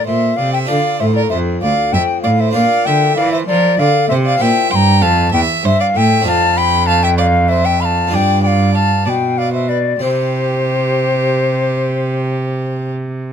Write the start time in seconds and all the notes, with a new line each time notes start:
Already playing: F4 A4
0.06 A#2 C5 E5
0.37 C3 D5 F5
0.53 E5 G5
0.65 D4 F4 A4 D5 F5
0.70 D3
1.00 A2 C5 E5
1.16 A#4 D5
1.30 F2 C5 E5
1.62 D2 D5 F5
1.92 F2 E5 G5
2.22 A2 D5 F5
2.39 C5 E5
2.51 A#2 D4 F4 A#4 D5 F5
2.56 A#2
2.85 D3 E5 G5
3.17 E3 D5 F5
3.32 C5 E5
3.47 F3 A#4 D5
3.79 D3 D5 F5
4.08 C3 C5 E5
4.26 D5 F5
4.37 A#2 C4 E4 G4 E5
4.41 A#2 G5
4.71 G2 G5 C6
4.75 A#5
5.02 F2 F5 A5
5.32 E2 E5 G5
5.63 G2 C5 E5
5.80 D5 F5
5.94 A2 E5 G5
6.21 C4 D4 F4
6.25 F2 F5 A5
6.57 G5 B5
6.87 F5 A5
7.03 E5 G5
7.18 D5 F5
7.49 C5 E5
7.65 E5 G5
7.80 F5 B5
7.85 A5
8.07 B3 D4 F4 A5
8.12 G2 D5 G5
8.43 D5 G5
8.47 F5
8.74 F5 A5
9.06 B2 D5 G5 A5
9.38 D5 F5
9.54 C5 E5
9.69 B4 D5
9.99 C3 C4 E4 G4 C5